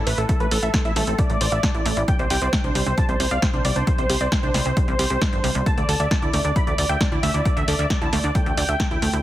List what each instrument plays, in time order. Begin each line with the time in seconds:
0.07 analog synth bass A1, synth arpeggio sound A3, supersaw synth B4, open hi-hat
0.18 analog synth bass A1, synth arpeggio sound E4, supersaw synth A4, closed hi-hat
0.29 synth arpeggio sound A3, supersaw synth A4, kick, closed hi-hat
0.40 analog synth bass A1, synth arpeggio sound A3, supersaw synth B4, closed hi-hat
0.51 analog synth bass A1, supersaw synth A4, synth arpeggio sound A4, open hi-hat
0.63 analog synth bass A1, supersaw synth A4, synth arpeggio sound E5, closed hi-hat
0.74 supersaw synth A4, synth arpeggio sound A5, kick, snare, closed hi-hat
0.85 analog synth bass A1, synth arpeggio sound E4, supersaw synth E5, closed hi-hat
0.96 analog synth bass A1, synth arpeggio sound A3, supersaw synth A4, snare, open hi-hat
1.07 analog synth bass A1, synth arpeggio sound C4, supersaw synth A4, closed hi-hat
1.19 synth arpeggio sound A3, supersaw synth D5, kick, closed hi-hat
1.30 analog synth bass A1, synth arpeggio sound A3, closed hi-hat
1.41 analog synth bass A1, synth arpeggio sound C5, open hi-hat
1.52 analog synth bass A1, synth arpeggio sound E5, closed hi-hat
1.63 synth arpeggio sound A5, kick, snare, closed hi-hat
1.74 analog synth bass A1, synth arpeggio sound E4, closed hi-hat
1.86 analog synth bass A1, synth arpeggio sound A3, open hi-hat
1.97 analog synth bass A1, synth arpeggio sound E4, closed hi-hat
2.08 synth arpeggio sound G3, supersaw synth G5, kick, closed hi-hat
2.19 analog synth bass C2, synth arpeggio sound G3, supersaw synth C5, closed hi-hat
2.30 analog synth bass C2, synth arpeggio sound G4, supersaw synth G5, open hi-hat
2.42 analog synth bass C2, supersaw synth C5, synth arpeggio sound D5, closed hi-hat
2.53 synth arpeggio sound G5, supersaw synth G5, kick, snare, closed hi-hat
2.64 analog synth bass C2, synth arpeggio sound D4, supersaw synth C5, closed hi-hat
2.75 analog synth bass C2, synth arpeggio sound G3, supersaw synth C5, open hi-hat
2.86 analog synth bass C2, synth arpeggio sound C4, supersaw synth C5, closed hi-hat
2.98 synth arpeggio sound G3, supersaw synth A5, kick, closed hi-hat
3.09 analog synth bass C2, synth arpeggio sound G3, supersaw synth C5, closed hi-hat
3.20 analog synth bass C2, synth arpeggio sound C5, supersaw synth C5, open hi-hat
3.31 analog synth bass C2, synth arpeggio sound D5, supersaw synth F5, closed hi-hat
3.42 supersaw synth C5, synth arpeggio sound G5, kick, snare, closed hi-hat
3.53 analog synth bass C2, synth arpeggio sound D4, supersaw synth C5, closed hi-hat
3.65 analog synth bass C2, synth arpeggio sound G3, supersaw synth D5, open hi-hat
3.76 analog synth bass C2, synth arpeggio sound D4, supersaw synth C5, closed hi-hat
3.87 synth arpeggio sound G3, supersaw synth C5, kick, closed hi-hat
3.98 analog synth bass C2, synth arpeggio sound G3, supersaw synth C5, closed hi-hat
4.09 analog synth bass C2, synth arpeggio sound G4, supersaw synth C5, open hi-hat
4.21 analog synth bass C2, supersaw synth C5, synth arpeggio sound D5
4.32 supersaw synth C5, synth arpeggio sound G5, kick, snare, closed hi-hat
4.43 analog synth bass C2, synth arpeggio sound D4, supersaw synth C5, closed hi-hat
4.54 analog synth bass C2, synth arpeggio sound G3, supersaw synth C5, snare, open hi-hat
4.65 analog synth bass C2, synth arpeggio sound C4, supersaw synth C5, closed hi-hat
4.77 synth arpeggio sound G3, supersaw synth C5, kick, closed hi-hat
4.88 analog synth bass C2, synth arpeggio sound G3, closed hi-hat
4.99 analog synth bass C2, synth arpeggio sound G4, open hi-hat
5.10 analog synth bass C2, synth arpeggio sound G4, closed hi-hat
5.21 synth arpeggio sound G3, kick, snare, closed hi-hat
5.33 analog synth bass G1, synth arpeggio sound D4, closed hi-hat
5.44 analog synth bass C2, synth arpeggio sound G3, open hi-hat
5.55 analog synth bass C2, synth arpeggio sound G3, closed hi-hat
5.66 synth arpeggio sound A3, supersaw synth A5, kick, closed hi-hat
5.77 analog synth bass D2, synth arpeggio sound A3, supersaw synth D5, closed hi-hat
5.89 analog synth bass D2, synth arpeggio sound A4, supersaw synth A5, open hi-hat
6.00 analog synth bass D2, supersaw synth D5, synth arpeggio sound E5, closed hi-hat
6.11 supersaw synth A5, synth arpeggio sound A5, kick, snare, closed hi-hat
6.22 analog synth bass D2, synth arpeggio sound E4, supersaw synth D5, closed hi-hat
6.33 analog synth bass D2, synth arpeggio sound A3, supersaw synth D5, open hi-hat
6.45 analog synth bass D2, synth arpeggio sound D4, supersaw synth D5, closed hi-hat
6.56 synth arpeggio sound A3, supersaw synth B5, kick, closed hi-hat
6.67 analog synth bass D2, synth arpeggio sound A3, supersaw synth D5, closed hi-hat
6.78 analog synth bass D2, synth arpeggio sound D5, supersaw synth D5, open hi-hat
6.89 analog synth bass D2, synth arpeggio sound E5, supersaw synth G5, closed hi-hat
7.00 supersaw synth D5, synth arpeggio sound A5, kick, snare, closed hi-hat
7.12 analog synth bass D2, synth arpeggio sound E4, supersaw synth D5, closed hi-hat
7.23 analog synth bass D2, synth arpeggio sound A3, supersaw synth E5, open hi-hat
7.34 analog synth bass D2, synth arpeggio sound E4, supersaw synth D5, closed hi-hat
7.45 synth arpeggio sound A3, supersaw synth D5, kick, closed hi-hat
7.57 analog synth bass D2, synth arpeggio sound A3, supersaw synth E5, closed hi-hat
7.68 analog synth bass D2, synth arpeggio sound A4, supersaw synth D5, open hi-hat
7.79 analog synth bass D2, supersaw synth D5, synth arpeggio sound E5, closed hi-hat
7.90 synth arpeggio sound A5, kick, snare, closed hi-hat
8.01 analog synth bass D2, synth arpeggio sound E4, supersaw synth A5, closed hi-hat
8.13 analog synth bass D2, synth arpeggio sound A3, supersaw synth D5, snare, open hi-hat
8.24 analog synth bass D2, synth arpeggio sound D4, supersaw synth D5, closed hi-hat
8.35 synth arpeggio sound A3, supersaw synth G5, kick, closed hi-hat
8.46 analog synth bass D2, synth arpeggio sound A3, closed hi-hat
8.57 analog synth bass D2, synth arpeggio sound D5, open hi-hat
8.69 analog synth bass D2, synth arpeggio sound E5
8.80 kick, snare, closed hi-hat
8.91 analog synth bass D2, synth arpeggio sound E4, closed hi-hat
9.02 analog synth bass D2, synth arpeggio sound A3, open hi-hat
9.13 analog synth bass D2, synth arpeggio sound E4, closed hi-hat